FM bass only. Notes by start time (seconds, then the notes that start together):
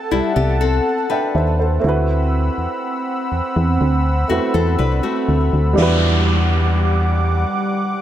0.12 C2
0.37 C2
1.35 D#2
1.84 D2
2.58 E2
3.32 E2
3.56 E2
3.81 D2
4.30 E2
4.55 E2
4.79 C2
5.29 D2
5.53 D2
5.78 E2